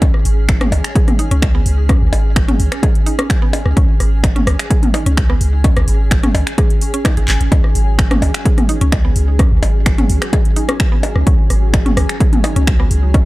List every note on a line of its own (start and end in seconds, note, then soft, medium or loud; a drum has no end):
0.00 0.11 C#2 loud
0.00 13.25 C#4 medium
0.00 0.05 C#4 medium
0.00 13.25 G#4 medium
0.00 13.25 G#5 medium
0.00 kick loud
0.00 closed hi-hat medium
0.00 percussion blips medium
0.14 cross-stick soft
0.25 0.67 G#1 medium
0.25 open hi-hat medium
0.49 finger snap medium
0.49 kick loud
0.49 closed hi-hat medium
0.61 0.65 C#4 medium
0.61 cross-stick medium
0.61 closed hi-hat soft
0.61 mid tom medium
0.72 0.81 C#2 medium
0.72 open hi-hat medium
0.72 percussion blips medium
0.84 finger snap medium
0.84 closed hi-hat soft
0.95 1.00 G#4 medium
0.95 kick loud
0.95 closed hi-hat medium
1.08 cross-stick soft
1.08 closed hi-hat soft
1.08 mid tom medium
1.19 1.22 D#4 medium
1.19 open hi-hat medium
1.31 1.61 C#2 loud
1.31 1.36 C#4 medium
1.31 closed hi-hat soft
1.42 finger snap medium
1.42 kick loud
1.42 cross-stick soft
1.42 closed hi-hat medium
1.42 percussion blips medium
1.55 1.57 B3 medium
1.66 1.96 C#2 medium
1.66 open hi-hat medium
1.89 1.92 C#4 medium
1.89 kick loud
1.89 cross-stick medium
1.89 closed hi-hat medium
2.01 2.10 C#2 medium
2.13 2.55 G#1 medium
2.13 open hi-hat medium
2.13 percussion blips medium
2.36 finger snap medium
2.36 kick loud
2.36 cross-stick soft
2.36 closed hi-hat medium
2.48 2.53 C#4 medium
2.48 closed hi-hat soft
2.48 mid tom medium
2.60 2.69 C#2 medium
2.60 open hi-hat medium
2.72 finger snap medium
2.72 cross-stick soft
2.72 closed hi-hat soft
2.83 2.88 G#4 medium
2.83 kick loud
2.83 closed hi-hat medium
2.83 percussion blips medium
2.95 closed hi-hat soft
3.06 3.09 D#4 medium
3.06 open hi-hat medium
3.19 3.23 C#4 medium
3.19 cross-stick medium
3.19 closed hi-hat soft
3.30 finger snap medium
3.30 kick loud
3.30 closed hi-hat medium
3.42 3.45 B3 medium
3.53 open hi-hat medium
3.53 percussion blips medium
3.66 3.74 C#2 medium
3.66 cross-stick soft
3.77 3.86 C#2 loud
3.77 3.80 C#4 medium
3.77 kick loud
3.77 closed hi-hat medium
4.00 4.42 G#1 medium
4.00 cross-stick soft
4.00 open hi-hat medium
4.24 finger snap medium
4.24 kick loud
4.24 closed hi-hat medium
4.24 percussion blips medium
4.36 4.40 C#4 medium
4.36 closed hi-hat soft
4.36 mid tom medium
4.47 4.56 C#2 medium
4.47 cross-stick medium
4.47 open hi-hat medium
4.59 finger snap medium
4.59 closed hi-hat soft
4.71 4.75 G#4 medium
4.71 kick loud
4.71 closed hi-hat medium
4.83 closed hi-hat soft
4.83 mid tom medium
4.94 4.97 D#4 medium
4.94 cross-stick soft
4.94 open hi-hat medium
4.94 percussion blips medium
5.06 5.36 C#2 loud
5.06 5.11 C#4 medium
5.06 closed hi-hat soft
5.17 finger snap medium
5.17 kick medium
5.17 closed hi-hat medium
5.30 5.32 B3 medium
5.30 cross-stick soft
5.41 5.71 C#2 loud
5.41 open hi-hat medium
5.64 5.67 C#4 medium
5.64 kick loud
5.64 closed hi-hat medium
5.64 percussion blips medium
5.77 5.85 C#2 medium
5.77 cross-stick medium
5.77 closed hi-hat soft
5.88 6.30 G#1 medium
5.88 open hi-hat medium
6.11 finger snap loud
6.11 kick loud
6.11 closed hi-hat medium
6.23 6.28 C#4 medium
6.23 cross-stick soft
6.23 closed hi-hat soft
6.23 mid tom medium
6.35 6.44 C#2 medium
6.35 open hi-hat medium
6.35 percussion blips medium
6.47 finger snap medium
6.47 closed hi-hat soft
6.58 6.63 G#4 medium
6.58 kick loud
6.58 cross-stick soft
6.58 closed hi-hat medium
6.70 closed hi-hat soft
6.81 open hi-hat medium
6.94 6.96 C#4 medium
6.94 closed hi-hat soft
7.05 7.10 D#4 medium
7.05 finger snap medium
7.05 kick loud
7.05 cross-stick medium
7.05 closed hi-hat medium
7.05 percussion blips medium
7.17 7.25 G#1 medium
7.17 7.22 G#4 medium
7.17 closed hi-hat soft
7.28 7.37 G#1 loud
7.28 clap medium
7.28 open hi-hat medium
7.41 7.49 G#1 medium
7.41 closed hi-hat soft
7.52 7.61 C#2 loud
7.52 13.25 F#3 medium
7.52 7.55 C#4 medium
7.52 13.25 F#4 medium
7.52 kick loud
7.52 closed hi-hat medium
7.52 percussion blips medium
7.64 cross-stick soft
7.75 8.17 G#1 medium
7.75 open hi-hat medium
7.99 finger snap loud
7.99 kick loud
7.99 closed hi-hat medium
8.11 8.15 C#4 medium
8.11 cross-stick medium
8.11 closed hi-hat soft
8.11 mid tom medium
8.22 8.31 C#2 medium
8.22 open hi-hat medium
8.22 percussion blips medium
8.34 finger snap medium
8.34 closed hi-hat soft
8.45 8.50 G#4 medium
8.45 kick loud
8.45 closed hi-hat medium
8.58 cross-stick soft
8.58 closed hi-hat soft
8.58 mid tom medium
8.69 8.72 D#4 medium
8.69 open hi-hat medium
8.81 9.11 C#2 loud
8.81 8.86 C#4 medium
8.81 closed hi-hat soft
8.92 finger snap medium
8.92 kick loud
8.92 cross-stick soft
8.92 closed hi-hat medium
8.92 percussion blips medium
9.05 9.07 B3 medium
9.16 9.46 C#2 loud
9.16 open hi-hat medium
9.39 9.42 C#4 medium
9.39 kick loud
9.39 cross-stick medium
9.39 closed hi-hat medium
9.52 9.60 C#2 loud
9.63 10.05 G#1 medium
9.63 open hi-hat loud
9.63 percussion blips medium
9.86 finger snap loud
9.86 kick loud
9.86 cross-stick soft
9.86 closed hi-hat medium
9.98 10.03 C#4 medium
9.98 closed hi-hat soft
9.98 mid tom medium
10.10 10.19 C#2 medium
10.10 open hi-hat medium
10.22 finger snap medium
10.22 cross-stick soft
10.22 closed hi-hat soft
10.33 10.38 G#4 medium
10.33 kick loud
10.33 closed hi-hat medium
10.33 percussion blips medium
10.45 closed hi-hat soft
10.56 10.59 D#4 medium
10.56 open hi-hat medium
10.69 10.73 C#4 medium
10.69 cross-stick medium
10.69 closed hi-hat soft
10.80 finger snap medium
10.80 kick loud
10.80 closed hi-hat medium
10.92 10.95 B3 medium
11.03 open hi-hat medium
11.03 percussion blips medium
11.16 11.24 C#2 medium
11.16 cross-stick soft
11.27 11.36 C#2 loud
11.27 11.30 C#4 medium
11.27 kick loud
11.27 closed hi-hat medium
11.50 11.92 G#1 medium
11.50 cross-stick soft
11.50 open hi-hat loud
11.74 finger snap loud
11.74 kick loud
11.74 closed hi-hat medium
11.74 percussion blips medium
11.86 11.90 C#4 medium
11.86 closed hi-hat soft
11.86 mid tom medium
11.97 12.06 C#2 medium
11.97 cross-stick medium
11.97 open hi-hat medium
12.09 finger snap medium
12.09 closed hi-hat soft
12.20 12.25 G#4 medium
12.20 kick loud
12.20 closed hi-hat medium
12.33 closed hi-hat soft
12.33 mid tom medium
12.44 12.47 D#4 medium
12.44 cross-stick soft
12.44 open hi-hat loud
12.44 percussion blips medium
12.56 12.86 C#2 loud
12.56 12.61 C#4 medium
12.56 closed hi-hat soft
12.67 finger snap medium
12.67 kick loud
12.67 closed hi-hat medium
12.80 12.82 B3 medium
12.80 cross-stick soft
12.91 13.21 C#2 loud
12.91 open hi-hat loud
13.14 13.17 C#4 medium
13.14 kick loud
13.14 closed hi-hat medium
13.14 percussion blips medium